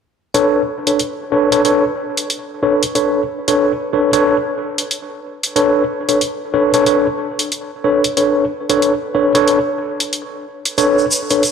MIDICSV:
0, 0, Header, 1, 3, 480
1, 0, Start_track
1, 0, Key_signature, 2, "minor"
1, 0, Tempo, 652174
1, 254, Time_signature, 4, 2, 24, 8
1, 8477, End_track
2, 0, Start_track
2, 0, Title_t, "Tine electric piano"
2, 0, Program_c, 0, 4
2, 252, Note_on_c, 0, 71, 81
2, 253, Note_on_c, 0, 62, 86
2, 253, Note_on_c, 0, 69, 84
2, 253, Note_on_c, 0, 73, 99
2, 449, Note_off_c, 0, 62, 0
2, 449, Note_off_c, 0, 69, 0
2, 449, Note_off_c, 0, 71, 0
2, 449, Note_off_c, 0, 73, 0
2, 639, Note_on_c, 0, 62, 69
2, 639, Note_on_c, 0, 71, 61
2, 639, Note_on_c, 0, 73, 70
2, 640, Note_on_c, 0, 69, 59
2, 728, Note_off_c, 0, 62, 0
2, 728, Note_off_c, 0, 71, 0
2, 728, Note_off_c, 0, 73, 0
2, 729, Note_off_c, 0, 69, 0
2, 972, Note_on_c, 0, 62, 81
2, 972, Note_on_c, 0, 69, 72
2, 972, Note_on_c, 0, 71, 73
2, 972, Note_on_c, 0, 73, 88
2, 1098, Note_off_c, 0, 62, 0
2, 1098, Note_off_c, 0, 69, 0
2, 1098, Note_off_c, 0, 71, 0
2, 1098, Note_off_c, 0, 73, 0
2, 1119, Note_on_c, 0, 62, 77
2, 1119, Note_on_c, 0, 69, 74
2, 1119, Note_on_c, 0, 71, 72
2, 1119, Note_on_c, 0, 73, 86
2, 1190, Note_off_c, 0, 62, 0
2, 1190, Note_off_c, 0, 71, 0
2, 1191, Note_off_c, 0, 69, 0
2, 1191, Note_off_c, 0, 73, 0
2, 1213, Note_on_c, 0, 62, 74
2, 1214, Note_on_c, 0, 69, 65
2, 1214, Note_on_c, 0, 71, 66
2, 1214, Note_on_c, 0, 73, 79
2, 1354, Note_off_c, 0, 62, 0
2, 1354, Note_off_c, 0, 69, 0
2, 1354, Note_off_c, 0, 71, 0
2, 1354, Note_off_c, 0, 73, 0
2, 1933, Note_on_c, 0, 69, 68
2, 1934, Note_on_c, 0, 62, 76
2, 1934, Note_on_c, 0, 71, 67
2, 1934, Note_on_c, 0, 73, 80
2, 2073, Note_off_c, 0, 69, 0
2, 2074, Note_off_c, 0, 62, 0
2, 2074, Note_off_c, 0, 71, 0
2, 2074, Note_off_c, 0, 73, 0
2, 2173, Note_on_c, 0, 73, 78
2, 2174, Note_on_c, 0, 62, 67
2, 2174, Note_on_c, 0, 69, 62
2, 2174, Note_on_c, 0, 71, 64
2, 2369, Note_off_c, 0, 62, 0
2, 2369, Note_off_c, 0, 69, 0
2, 2369, Note_off_c, 0, 71, 0
2, 2369, Note_off_c, 0, 73, 0
2, 2561, Note_on_c, 0, 69, 76
2, 2561, Note_on_c, 0, 71, 74
2, 2561, Note_on_c, 0, 73, 92
2, 2562, Note_on_c, 0, 62, 85
2, 2731, Note_off_c, 0, 62, 0
2, 2731, Note_off_c, 0, 69, 0
2, 2731, Note_off_c, 0, 71, 0
2, 2731, Note_off_c, 0, 73, 0
2, 2893, Note_on_c, 0, 62, 74
2, 2893, Note_on_c, 0, 69, 68
2, 2893, Note_on_c, 0, 71, 70
2, 2893, Note_on_c, 0, 73, 81
2, 3018, Note_off_c, 0, 69, 0
2, 3018, Note_off_c, 0, 73, 0
2, 3019, Note_off_c, 0, 62, 0
2, 3019, Note_off_c, 0, 71, 0
2, 3040, Note_on_c, 0, 62, 88
2, 3040, Note_on_c, 0, 69, 81
2, 3040, Note_on_c, 0, 73, 102
2, 3041, Note_on_c, 0, 71, 82
2, 3210, Note_off_c, 0, 62, 0
2, 3210, Note_off_c, 0, 69, 0
2, 3210, Note_off_c, 0, 73, 0
2, 3211, Note_off_c, 0, 71, 0
2, 4092, Note_on_c, 0, 69, 83
2, 4092, Note_on_c, 0, 73, 100
2, 4093, Note_on_c, 0, 62, 92
2, 4093, Note_on_c, 0, 71, 84
2, 4289, Note_off_c, 0, 62, 0
2, 4289, Note_off_c, 0, 69, 0
2, 4289, Note_off_c, 0, 71, 0
2, 4289, Note_off_c, 0, 73, 0
2, 4479, Note_on_c, 0, 73, 75
2, 4480, Note_on_c, 0, 62, 67
2, 4480, Note_on_c, 0, 69, 64
2, 4480, Note_on_c, 0, 71, 60
2, 4568, Note_off_c, 0, 73, 0
2, 4569, Note_off_c, 0, 62, 0
2, 4569, Note_off_c, 0, 69, 0
2, 4569, Note_off_c, 0, 71, 0
2, 4812, Note_on_c, 0, 62, 82
2, 4812, Note_on_c, 0, 69, 72
2, 4812, Note_on_c, 0, 71, 77
2, 4812, Note_on_c, 0, 73, 89
2, 4938, Note_off_c, 0, 62, 0
2, 4938, Note_off_c, 0, 69, 0
2, 4938, Note_off_c, 0, 71, 0
2, 4938, Note_off_c, 0, 73, 0
2, 4960, Note_on_c, 0, 69, 74
2, 4961, Note_on_c, 0, 62, 80
2, 4961, Note_on_c, 0, 71, 75
2, 4961, Note_on_c, 0, 73, 91
2, 5031, Note_off_c, 0, 62, 0
2, 5031, Note_off_c, 0, 69, 0
2, 5031, Note_off_c, 0, 71, 0
2, 5031, Note_off_c, 0, 73, 0
2, 5053, Note_on_c, 0, 62, 73
2, 5053, Note_on_c, 0, 69, 67
2, 5053, Note_on_c, 0, 71, 66
2, 5054, Note_on_c, 0, 73, 79
2, 5193, Note_off_c, 0, 71, 0
2, 5194, Note_off_c, 0, 62, 0
2, 5194, Note_off_c, 0, 69, 0
2, 5194, Note_off_c, 0, 73, 0
2, 5772, Note_on_c, 0, 62, 75
2, 5772, Note_on_c, 0, 73, 84
2, 5773, Note_on_c, 0, 69, 69
2, 5773, Note_on_c, 0, 71, 68
2, 5913, Note_off_c, 0, 62, 0
2, 5913, Note_off_c, 0, 69, 0
2, 5913, Note_off_c, 0, 71, 0
2, 5913, Note_off_c, 0, 73, 0
2, 6013, Note_on_c, 0, 69, 64
2, 6013, Note_on_c, 0, 71, 65
2, 6013, Note_on_c, 0, 73, 78
2, 6014, Note_on_c, 0, 62, 70
2, 6209, Note_off_c, 0, 62, 0
2, 6209, Note_off_c, 0, 69, 0
2, 6209, Note_off_c, 0, 71, 0
2, 6209, Note_off_c, 0, 73, 0
2, 6399, Note_on_c, 0, 69, 80
2, 6400, Note_on_c, 0, 62, 87
2, 6400, Note_on_c, 0, 71, 75
2, 6400, Note_on_c, 0, 73, 91
2, 6570, Note_off_c, 0, 62, 0
2, 6570, Note_off_c, 0, 69, 0
2, 6570, Note_off_c, 0, 71, 0
2, 6570, Note_off_c, 0, 73, 0
2, 6731, Note_on_c, 0, 62, 75
2, 6731, Note_on_c, 0, 69, 67
2, 6732, Note_on_c, 0, 71, 67
2, 6732, Note_on_c, 0, 73, 80
2, 6857, Note_off_c, 0, 69, 0
2, 6858, Note_off_c, 0, 62, 0
2, 6858, Note_off_c, 0, 71, 0
2, 6858, Note_off_c, 0, 73, 0
2, 6879, Note_on_c, 0, 62, 90
2, 6879, Note_on_c, 0, 69, 84
2, 6879, Note_on_c, 0, 71, 83
2, 6879, Note_on_c, 0, 73, 101
2, 7050, Note_off_c, 0, 62, 0
2, 7050, Note_off_c, 0, 69, 0
2, 7050, Note_off_c, 0, 71, 0
2, 7050, Note_off_c, 0, 73, 0
2, 7932, Note_on_c, 0, 62, 88
2, 7932, Note_on_c, 0, 69, 83
2, 7932, Note_on_c, 0, 71, 83
2, 7933, Note_on_c, 0, 73, 99
2, 8129, Note_off_c, 0, 62, 0
2, 8129, Note_off_c, 0, 69, 0
2, 8129, Note_off_c, 0, 71, 0
2, 8129, Note_off_c, 0, 73, 0
2, 8321, Note_on_c, 0, 62, 69
2, 8321, Note_on_c, 0, 69, 62
2, 8321, Note_on_c, 0, 71, 62
2, 8321, Note_on_c, 0, 73, 74
2, 8409, Note_off_c, 0, 62, 0
2, 8409, Note_off_c, 0, 69, 0
2, 8409, Note_off_c, 0, 71, 0
2, 8409, Note_off_c, 0, 73, 0
2, 8477, End_track
3, 0, Start_track
3, 0, Title_t, "Drums"
3, 253, Note_on_c, 9, 42, 51
3, 327, Note_off_c, 9, 42, 0
3, 640, Note_on_c, 9, 42, 58
3, 713, Note_off_c, 9, 42, 0
3, 732, Note_on_c, 9, 42, 49
3, 806, Note_off_c, 9, 42, 0
3, 1120, Note_on_c, 9, 42, 61
3, 1193, Note_off_c, 9, 42, 0
3, 1213, Note_on_c, 9, 42, 47
3, 1287, Note_off_c, 9, 42, 0
3, 1600, Note_on_c, 9, 42, 63
3, 1674, Note_off_c, 9, 42, 0
3, 1693, Note_on_c, 9, 42, 49
3, 1766, Note_off_c, 9, 42, 0
3, 2080, Note_on_c, 9, 42, 61
3, 2154, Note_off_c, 9, 42, 0
3, 2173, Note_on_c, 9, 42, 50
3, 2247, Note_off_c, 9, 42, 0
3, 2560, Note_on_c, 9, 42, 59
3, 2634, Note_off_c, 9, 42, 0
3, 3041, Note_on_c, 9, 42, 62
3, 3114, Note_off_c, 9, 42, 0
3, 3520, Note_on_c, 9, 42, 62
3, 3593, Note_off_c, 9, 42, 0
3, 3613, Note_on_c, 9, 42, 50
3, 3687, Note_off_c, 9, 42, 0
3, 4000, Note_on_c, 9, 42, 64
3, 4073, Note_off_c, 9, 42, 0
3, 4093, Note_on_c, 9, 42, 48
3, 4167, Note_off_c, 9, 42, 0
3, 4480, Note_on_c, 9, 42, 58
3, 4553, Note_off_c, 9, 42, 0
3, 4572, Note_on_c, 9, 42, 51
3, 4646, Note_off_c, 9, 42, 0
3, 4959, Note_on_c, 9, 42, 63
3, 5032, Note_off_c, 9, 42, 0
3, 5052, Note_on_c, 9, 42, 50
3, 5126, Note_off_c, 9, 42, 0
3, 5440, Note_on_c, 9, 42, 60
3, 5513, Note_off_c, 9, 42, 0
3, 5533, Note_on_c, 9, 42, 48
3, 5606, Note_off_c, 9, 42, 0
3, 5920, Note_on_c, 9, 42, 61
3, 5993, Note_off_c, 9, 42, 0
3, 6013, Note_on_c, 9, 42, 50
3, 6086, Note_off_c, 9, 42, 0
3, 6399, Note_on_c, 9, 42, 58
3, 6473, Note_off_c, 9, 42, 0
3, 6493, Note_on_c, 9, 42, 48
3, 6566, Note_off_c, 9, 42, 0
3, 6881, Note_on_c, 9, 42, 60
3, 6954, Note_off_c, 9, 42, 0
3, 6973, Note_on_c, 9, 42, 47
3, 7047, Note_off_c, 9, 42, 0
3, 7361, Note_on_c, 9, 42, 60
3, 7434, Note_off_c, 9, 42, 0
3, 7454, Note_on_c, 9, 42, 46
3, 7527, Note_off_c, 9, 42, 0
3, 7841, Note_on_c, 9, 42, 59
3, 7915, Note_off_c, 9, 42, 0
3, 7933, Note_on_c, 9, 42, 48
3, 7934, Note_on_c, 9, 82, 45
3, 8007, Note_off_c, 9, 42, 0
3, 8008, Note_off_c, 9, 82, 0
3, 8084, Note_on_c, 9, 82, 24
3, 8158, Note_off_c, 9, 82, 0
3, 8180, Note_on_c, 9, 82, 92
3, 8254, Note_off_c, 9, 82, 0
3, 8316, Note_on_c, 9, 82, 39
3, 8321, Note_on_c, 9, 42, 56
3, 8390, Note_off_c, 9, 82, 0
3, 8394, Note_off_c, 9, 42, 0
3, 8413, Note_on_c, 9, 42, 44
3, 8418, Note_on_c, 9, 82, 47
3, 8477, Note_off_c, 9, 42, 0
3, 8477, Note_off_c, 9, 82, 0
3, 8477, End_track
0, 0, End_of_file